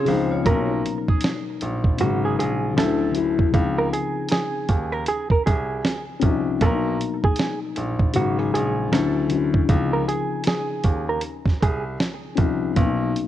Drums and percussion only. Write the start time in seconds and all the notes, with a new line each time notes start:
0.06 open hi-hat
0.46 kick, closed hi-hat
0.86 closed hi-hat
1.08 kick
1.21 snare, closed hi-hat
1.61 closed hi-hat
1.84 kick
1.98 closed hi-hat
2.40 closed hi-hat
2.78 snare, closed hi-hat
3.15 closed hi-hat
3.39 kick
3.54 kick, closed hi-hat
3.93 closed hi-hat
4.29 snare, closed hi-hat
4.69 kick, closed hi-hat
5.06 closed hi-hat
5.30 kick
5.47 kick, closed hi-hat
5.85 snare, closed hi-hat
6.22 kick, closed hi-hat
6.61 kick, closed hi-hat
7.01 closed hi-hat
7.24 kick
7.36 snare, closed hi-hat
7.76 closed hi-hat
8.00 kick
8.14 closed hi-hat
8.55 closed hi-hat
8.93 snare, closed hi-hat
9.30 closed hi-hat
9.54 kick
9.69 kick, closed hi-hat
10.09 closed hi-hat
10.44 snare, closed hi-hat
10.83 kick, closed hi-hat
11.21 closed hi-hat
11.45 kick, snare
11.62 kick, closed hi-hat
12.00 snare, closed hi-hat
12.37 kick, closed hi-hat
12.76 kick, closed hi-hat
13.16 closed hi-hat